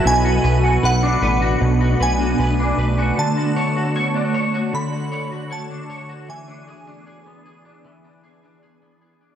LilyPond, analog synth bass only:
\new Staff \with { instrumentName = "Analog synth bass" } { \clef bass \time 4/4 \key b \dorian \tempo 4 = 77 b,,8 b,,8 b,,8 a,,8 b,,8 b,,8 b,,8 b,,8 | r1 | r1 | }